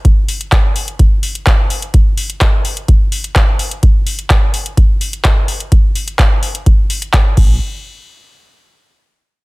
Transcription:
0.05 kick, closed hi-hat
0.29 open hi-hat
0.41 closed hi-hat
0.52 kick, clap, closed hi-hat
0.76 open hi-hat
0.88 closed hi-hat
0.99 kick, closed hi-hat
1.23 open hi-hat
1.35 closed hi-hat
1.47 kick, clap, closed hi-hat
1.70 open hi-hat
1.82 closed hi-hat
1.94 kick, closed hi-hat
2.17 open hi-hat
2.30 closed hi-hat
2.41 kick, clap, closed hi-hat
2.65 open hi-hat
2.77 closed hi-hat
2.88 kick, closed hi-hat
3.12 open hi-hat
3.24 closed hi-hat
3.36 kick, clap, closed hi-hat
3.59 open hi-hat
3.71 closed hi-hat
3.83 kick, closed hi-hat
4.07 open hi-hat
4.19 closed hi-hat
4.30 kick, clap, closed hi-hat
4.54 open hi-hat
4.66 closed hi-hat
4.77 kick, closed hi-hat
5.01 open hi-hat
5.13 closed hi-hat
5.25 kick, clap, closed hi-hat
5.48 open hi-hat
5.60 closed hi-hat
5.72 kick, closed hi-hat
5.95 open hi-hat
6.08 closed hi-hat
6.19 kick, clap, closed hi-hat
6.43 open hi-hat
6.55 closed hi-hat
6.66 kick, closed hi-hat
6.90 open hi-hat
7.02 closed hi-hat
7.14 kick, clap, closed hi-hat
7.37 A#1, kick, crash

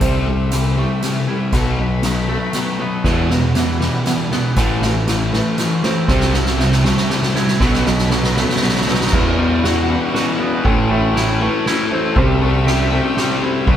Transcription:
Already playing: A3 C4 A4
0.01 C2 C3 G3 C4 C5 E5 G5, kick, snare, closed hi-hat
0.27 C3 G3
0.51 C3 E3 G3 E5, snare, closed hi-hat
0.77 C3 G3 A3
1.02 C3 E3 G3, snare, closed hi-hat
1.28 C3 G3 E4
1.52 B1 B2 F#3 B3 F#4 D#5 B5, kick, snare, closed hi-hat
1.78 B2 F#3 D#5
2.03 B2 D#3 F#3, snare, closed hi-hat
2.28 B2 F#3 A3 A4
2.53 B2 D#3 F#3, snare, closed hi-hat
2.79 B2 F#3 B3 B4
3.04 E2 B2 E3 E4 G4 B4 F#5, kick, snare, crash
3.30 E2 B2, snare
3.55 E2 B2 E3 E5, snare, closed hi-hat
3.80 E2 B2 G3, snare
4.06 E2 B2 E3, snare, closed hi-hat
4.31 E2 B2 B3, snare
4.55 A1 A2 E3 A3 C4 E4 A4, kick, snare, closed hi-hat
4.82 A2 E3 E5, snare
5.07 A2 E3, snare, closed hi-hat
5.33 A2 E3 A3 B4, snare
5.58 A2 E3, snare, closed hi-hat
5.83 A2 E3 C4 C5, snare
6.08 C2 C3 G3 C4 C5 E5 G5, kick, snare
6.20 snare
6.33 C3 G3, snare
6.46 snare
6.59 C3 E3 G3 E5, snare
6.72 snare
6.84 C3 G3 A3, snare
6.97 snare
7.10 C3 E3 G3, snare
7.22 snare
7.35 C3 G3 E4, snare
7.48 snare
7.60 B1 B2 F#3 B3 F#4 D#5 B5, kick, snare
7.73 snare
7.85 B2 F#3 D#5, snare
7.98 snare
8.10 B2 F#3, snare
8.23 snare
8.36 B2 F#3 A3 A4, snare
8.49 snare
8.56 snare
8.62 B2 F#3, snare
8.68 snare
8.75 snare
8.81 snare
8.87 B2 F#3 D#4 B4, snare
8.94 snare
9.00 snare
9.07 F#5, snare
9.11 E2 B2 E3 E4 B4, kick, crash
9.38 E2 B2 E3 G3
9.63 E2 B2 E3 F#4 E5, snare, ride
9.89 E2 B2 E3 G3
10.14 E2 B2 E3 F#4, snare, ride
10.39 E2 B2 E3 B3
10.64 A1 A2 E3 A3 C4 A4, kick, ride
10.90 A2 E3 A3 E5
11.15 A2 E3 A3 E4, snare, ride
11.40 A2 E3 A3 B4
11.66 A2 E3 A3 E4, snare, ride
11.91 A2 E3 A3 C4 C5
12.16 C2 C3 G3 C4 C5 E5 G5, kick, ride
12.42 C3 G3 A3 C4
12.67 C3 G3 C4 G4 E5, snare, ride
12.92 C3 G3 A3 C4
13.17 C3 G3 C4 G4, snare, ride
13.41 C3 G3 C4 E4
13.66 B1 B2 F#3 B3 F#4 D#5 B5, kick, ride

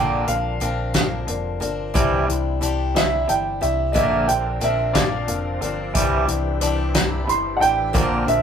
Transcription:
Already playing: A#1 A#2 D3 F3 A#3 C4 D4 A#4 C5 D5 G5
0.27 A#1 A#2 D3 A#4 C5 D5 F5, closed hi-hat
0.60 A#1 A#2 D3 F3 C4 D4 A#4 C5 F5, closed hi-hat
0.94 A#2 D3 F3 C4 D4 A#4, kick, snare, closed hi-hat
1.27 F1 A#2 D3 A#4 C5 D5, closed hi-hat
1.60 G1 A#2 D3 F3 C4 D4 A#4 C5 D5, closed hi-hat
1.94 C2 C3 E3 G3 D4 E4 G4 C5 D5, kick, closed hi-hat
2.28 C2 C3 E3 E4 C5 D5, closed hi-hat
2.61 C2 C3 E3 G3 D4 E4 G4 C5 D5, closed hi-hat
2.95 C3 E3 G3 D4 E4 G4 E5, snare, closed hi-hat
3.27 G1 C3 E3 E4 C5 D5 G5, closed hi-hat
3.61 C2 C3 E3 D4 E4 G4 C5 D5 E5, closed hi-hat
3.92 A#1 A#2 D3 F3 A#3 C4 D4 A#4 C5 D#5, kick, closed hi-hat
3.96 D5 E5
4.28 A#1 A#2 D3 A#4 C5 D5 G5, closed hi-hat
4.61 A#1 A#2 D3 F3 C4 D4 A#4 C5 D5 E5, closed hi-hat
4.93 A#2 D3 F3 C4 D4 A#4 D5 F5, kick, snare, closed hi-hat
5.28 F1 A#2 D3 A#4 C5 F5, closed hi-hat
5.61 G1 A#2 D3 F3 C4 D4 A#4 C5 D5, closed hi-hat
5.94 C2 C3 E3 G3 C4 D4 E4 G4 C5 D5, kick, closed hi-hat
6.27 C2 C3 E3 E4 C5 D5, closed hi-hat
6.61 C2 C3 E3 G3 D4 E4 G4 C5 D5, closed hi-hat
6.94 C3 E3 G3 D4 E4 G4, kick, snare, closed hi-hat
7.25 G1 C3 E3 E4 C5 E5 B5
7.29 C6, closed hi-hat
7.57 C3 E3 E4 C5 F#5
7.61 A1 D4 E4 G4 D5 G5, closed hi-hat
7.93 A#1 A#2 D3 F3 A#3 C4 D4 A#4 C5, kick, closed hi-hat
8.26 A#1 A#2 D3 D4 A#4 C5 E5, closed hi-hat

